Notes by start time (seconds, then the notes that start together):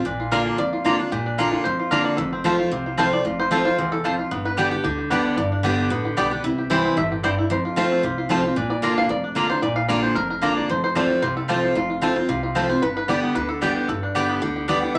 0.05 A#1 A#2 D4
0.20 F4
0.31 D3 A#3 D4 F4 A#4 D5 A#5
0.46 A#3
0.58 F2 D5
0.73 F4
0.84 D3 A#3 D4 F4 D5 A#5
0.99 D4 F4
1.12 A#1 A#2 G4
1.26 D4
1.38 D3 A#3 D4 F4 D5 A#5
1.52 F4
1.64 F2 C5
1.79 F4
1.91 D3 A#3 D4 F4 A#4 D5 A#5
2.04 D5
2.17 F1 F2 A4
2.33 C4
2.44 F3 A3 C4 F4 C5 A5
2.59 F4
2.71 C2 C3 C4
2.86 F4
2.98 F3 A3 C4 F4 C5 A5
3.13 D5
3.25 F1 F2 F4
3.40 C5
3.51 F3 A3 C4 F4 A4 C5 A5
3.65 F4
3.78 C2 E2 C4
3.92 A4
4.04 F2 C4 F4 C5 A5
4.19 F4
4.31 G1 G2 B3
4.45 B4
4.57 D3 G3 B3 G4 D5 G5
4.71 B3 G4
4.84 D2 D3 G4
4.99 G4
5.10 D3 G3 B3 G4 B4 D5 G5
5.25 D4
5.37 G1 G2 D5
5.52 D4
5.63 G1 D3 G3 B3 G4 D5 G5
5.78 G4
5.90 A1 D3 B3
6.05 G4
6.17 B1 D3 G3 B3 G4 D5 G5
6.31 B3 D4 G4
6.43 C2 C3 E4
6.58 G4
6.70 E3 G3 C4 E4 C5 G5
6.85 C4
6.97 G1 A2 E5
7.12 G4
7.23 G2 C4 E4 C5 D5 G5
7.38 E4
7.50 F2 C5
7.65 F4
7.76 F3 A3 C4 F4 C5 A5
7.92 C4
8.03 C2 C3 F4
8.18 F4
8.29 F3 A3 C4 F4 C5 A5
8.43 C4 F4
8.56 A#1 A#2 D4
8.70 D5
8.82 D3 A#3 D4 F4 D5 A#5
8.98 F5
9.09 F1 F2 D5
9.24 D4
9.35 D3 A#3 D4 F4 D5 A#5
9.49 D4 F4 C5
9.62 A#1 A#2 D5
9.76 F5
9.88 D3 A#3 D4 F4 D5 A#5
10.03 C5
10.15 F1 F2 A#4
10.30 A#4
10.41 D3 A#3 D4 F4 D5 A#5
10.57 D5
10.69 F1 F2 C5
10.84 C5
10.95 F3 A3 C4 F4 C5 D5 A5
11.10 F4
11.22 C2 C3 C5
11.37 A4
11.48 F3 A3 C4 F4 G4 C5 A5
11.63 F4
11.75 F1 F2 F4
11.90 F4
12.01 F3 A3 C4 F4 A4 C5 A5
12.16 C4 F4
12.29 C2 C3 F4
12.43 F4
12.55 F3 A3 C4 F4 C5 A5
12.69 C4 F4 C5
12.82 G1 G2 B4
12.97 B4
13.08 D3 G3 B3 G4 D5 G5
13.23 B3
13.35 D2 D3 B4
13.49 A4
13.61 D3 G3 B3 G4 D5 G5
13.76 G4
13.88 G1 G2 A4
14.03 D4
14.15 D3 G3 B3 G4 D5 G5
14.29 B3
14.42 D2 D3 G4
14.56 G4
14.68 D3 G3 B3 G4 D5 G5
14.83 G4
14.95 C2 C3 E5